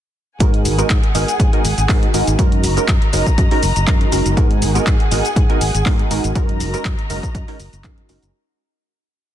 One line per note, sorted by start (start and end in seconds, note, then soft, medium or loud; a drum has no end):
0.40 0.67 G#2 loud
0.40 0.75 G#3 medium
0.40 0.75 B3 medium
0.40 0.75 D#4 medium
0.40 0.75 F#4 medium
0.40 2.37 G#4 medium
0.40 0.76 A#4 loud
0.40 2.37 F#5 medium
0.40 2.37 G#5 medium
0.40 kick loud
0.40 closed hi-hat loud
0.40 shaker soft
0.54 closed hi-hat soft
0.65 0.81 G#1 loud
0.65 open hi-hat loud
0.65 shaker medium
0.78 0.89 G#3 medium
0.78 0.89 B3 medium
0.78 0.89 D#4 medium
0.78 0.89 F#4 medium
0.78 0.89 A#4 loud
0.78 closed hi-hat soft
0.78 shaker soft
0.90 0.98 G#2 medium
0.90 kick loud
0.90 clap loud
0.90 closed hi-hat loud
0.90 shaker soft
1.03 closed hi-hat soft
1.14 1.23 G#1 loud
1.14 1.27 G#3 medium
1.14 1.27 B3 medium
1.14 1.27 D#4 medium
1.14 1.27 F#4 medium
1.14 1.27 A#4 medium
1.14 open hi-hat loud
1.14 shaker medium
1.28 closed hi-hat soft
1.28 shaker soft
1.40 1.48 G#2 medium
1.40 kick loud
1.40 closed hi-hat loud
1.40 shaker soft
1.53 1.63 G#3 loud
1.53 1.63 B3 medium
1.53 1.63 D#4 medium
1.53 1.63 F#4 medium
1.53 1.63 A#4 loud
1.53 closed hi-hat soft
1.65 1.73 G#1 medium
1.65 open hi-hat loud
1.65 shaker medium
1.78 1.85 G#1 loud
1.78 closed hi-hat soft
1.78 shaker soft
1.89 2.05 G#2 medium
1.89 2.11 G#3 medium
1.89 2.11 B3 medium
1.89 2.11 D#4 medium
1.89 2.11 F#4 medium
1.89 2.11 A#4 loud
1.89 kick loud
1.89 clap loud
1.89 open hi-hat medium
1.89 shaker soft
2.03 closed hi-hat soft
2.14 2.22 G#1 medium
2.14 2.36 G#3 medium
2.14 2.36 B3 medium
2.14 2.36 D#4 medium
2.14 2.36 F#4 medium
2.14 2.36 A#4 loud
2.14 open hi-hat loud
2.14 shaker medium
2.27 2.34 G#1 loud
2.27 closed hi-hat soft
2.27 shaker soft
2.38 2.65 F#2 loud
2.38 2.74 G#3 medium
2.38 2.74 C#4 medium
2.38 2.74 D#4 medium
2.38 4.35 F#4 medium
2.38 2.74 F#4 medium
2.38 2.74 A#4 loud
2.38 4.35 D#5 medium
2.38 4.35 A#5 medium
2.38 kick loud
2.38 closed hi-hat medium
2.38 shaker soft
2.52 closed hi-hat soft
2.64 2.76 F#1 loud
2.64 open hi-hat loud
2.64 shaker medium
2.77 2.87 G#3 medium
2.77 2.87 C#4 medium
2.77 2.87 D#4 medium
2.77 2.87 F#4 medium
2.77 2.87 A#4 medium
2.77 muted fingered electric bass stroke soft
2.77 closed hi-hat soft
2.77 shaker soft
2.88 2.96 F#2 medium
2.88 kick loud
2.88 clap loud
2.88 closed hi-hat loud
2.88 shaker soft
3.02 closed hi-hat soft
3.13 3.21 F#1 loud
3.13 3.25 G#3 medium
3.13 3.25 C#4 medium
3.13 3.25 D#4 medium
3.13 3.25 F#4 medium
3.13 3.25 A#4 medium
3.13 open hi-hat loud
3.13 shaker medium
3.27 kick medium
3.27 closed hi-hat soft
3.27 shaker soft
3.38 3.46 F#2 medium
3.38 kick loud
3.38 closed hi-hat loud
3.38 shaker soft
3.51 3.61 G#3 loud
3.51 3.61 C#4 medium
3.51 3.62 D#4 medium
3.51 3.62 F#4 medium
3.51 3.62 A#4 loud
3.51 open hi-hat medium
3.63 3.71 F#1 medium
3.63 open hi-hat loud
3.63 shaker medium
3.76 3.83 F#1 loud
3.76 closed hi-hat soft
3.76 shaker soft
3.87 4.03 F#2 medium
3.87 4.09 G#3 medium
3.87 4.10 C#4 medium
3.87 4.10 D#4 medium
3.87 4.10 F#4 medium
3.87 4.10 A#4 loud
3.87 kick loud
3.87 clap loud
3.87 closed hi-hat medium
3.87 shaker soft
4.01 closed hi-hat soft
4.12 4.21 F#1 medium
4.12 4.34 G#3 medium
4.12 4.34 C#4 medium
4.12 4.34 D#4 medium
4.12 4.34 F#4 medium
4.12 4.35 A#4 loud
4.12 open hi-hat loud
4.12 shaker medium
4.26 4.33 F#1 loud
4.26 closed hi-hat soft
4.26 shaker soft
4.37 4.64 G#2 loud
4.37 4.72 G#3 medium
4.37 4.72 B3 medium
4.37 4.72 D#4 medium
4.37 4.72 F#4 medium
4.37 6.34 G#4 medium
4.37 4.72 A#4 loud
4.37 6.34 F#5 medium
4.37 6.34 G#5 medium
4.37 kick loud
4.37 closed hi-hat medium
4.37 shaker soft
4.51 closed hi-hat soft
4.62 4.78 G#1 loud
4.62 open hi-hat loud
4.62 shaker medium
4.75 4.85 G#3 medium
4.75 4.85 B3 medium
4.75 4.85 D#4 medium
4.75 4.86 F#4 medium
4.75 4.86 A#4 medium
4.75 closed hi-hat soft
4.75 shaker soft
4.87 4.95 G#2 medium
4.87 kick loud
4.87 clap loud
4.87 closed hi-hat medium
4.87 shaker soft
5.00 closed hi-hat soft
5.11 5.20 G#1 loud
5.11 5.23 G#3 medium
5.11 5.23 B3 medium
5.11 5.23 D#4 medium
5.11 5.24 F#4 medium
5.11 5.24 A#4 medium
5.11 open hi-hat loud
5.11 shaker medium
5.25 closed hi-hat soft
5.25 shaker soft
5.36 5.44 G#2 medium
5.36 kick loud
5.36 closed hi-hat medium
5.36 shaker soft
5.49 5.60 G#3 loud
5.49 5.60 B3 medium
5.49 5.60 D#4 medium
5.49 5.60 F#4 medium
5.49 5.60 A#4 loud
5.49 closed hi-hat soft
5.61 5.69 G#1 medium
5.61 open hi-hat loud
5.61 shaker medium
5.74 5.81 G#1 loud
5.74 closed hi-hat soft
5.74 shaker soft
5.85 6.02 G#2 medium
5.85 6.08 G#3 medium
5.85 6.08 B3 medium
5.85 6.08 D#4 medium
5.85 6.08 F#4 medium
5.85 6.08 A#4 loud
5.85 kick loud
5.85 clap loud
5.85 open hi-hat medium
5.85 shaker soft
5.99 closed hi-hat soft
6.10 6.19 G#1 medium
6.10 6.33 G#3 medium
6.10 6.33 B3 medium
6.10 6.33 D#4 medium
6.10 6.33 F#4 medium
6.10 6.33 A#4 loud
6.10 open hi-hat loud
6.10 shaker medium
6.24 6.31 G#1 loud
6.24 closed hi-hat soft
6.24 shaker soft
6.35 6.62 F#2 loud
6.35 6.70 G#3 medium
6.35 6.70 C#4 medium
6.35 6.71 D#4 medium
6.35 8.32 F#4 medium
6.35 6.71 F#4 medium
6.35 6.71 A#4 loud
6.35 8.32 D#5 medium
6.35 8.32 A#5 medium
6.35 kick loud
6.35 closed hi-hat medium
6.35 shaker soft
6.49 closed hi-hat soft
6.60 6.73 F#1 loud
6.60 open hi-hat loud
6.60 shaker medium
6.73 6.84 G#3 medium
6.73 6.84 C#4 medium
6.73 6.84 D#4 medium
6.73 6.84 F#4 medium
6.73 6.84 A#4 medium
6.73 muted fingered electric bass stroke soft
6.73 closed hi-hat soft
6.73 shaker soft
6.85 6.93 F#2 medium
6.85 kick loud
6.85 clap loud
6.85 closed hi-hat medium
6.85 shaker soft
6.99 closed hi-hat soft
7.10 7.18 F#1 loud
7.10 7.22 G#3 medium
7.10 7.22 C#4 medium
7.10 7.22 D#4 medium
7.10 7.22 F#4 medium
7.10 7.22 A#4 medium
7.10 open hi-hat loud
7.10 shaker medium
7.23 kick medium
7.23 closed hi-hat soft
7.23 shaker soft
7.35 7.43 F#2 medium
7.35 kick loud
7.35 closed hi-hat medium
7.35 shaker soft
7.48 7.58 G#3 medium
7.48 7.58 C#4 medium
7.48 7.58 D#4 medium
7.48 7.58 F#4 medium
7.48 7.59 A#4 loud
7.48 open hi-hat medium
7.60 7.68 F#1 medium
7.60 open hi-hat loud
7.60 shaker medium
7.73 7.86 F#1 loud
7.73 closed hi-hat soft
7.73 shaker soft
7.84 8.00 F#2 medium
7.84 8.06 G#3 medium
7.84 8.06 C#4 medium
7.84 8.06 D#4 medium
7.84 8.06 F#4 medium
7.84 8.07 A#4 loud
7.84 kick loud
7.84 clap loud
7.84 closed hi-hat medium
7.84 shaker soft
7.98 closed hi-hat soft
8.09 8.17 F#1 medium
8.09 8.31 G#3 medium
8.09 8.31 C#4 medium
8.09 8.31 D#4 medium
8.09 8.31 F#4 medium
8.09 8.31 A#4 loud
8.09 open hi-hat loud
8.09 shaker medium
8.23 8.30 F#1 medium
8.23 closed hi-hat soft
8.23 shaker soft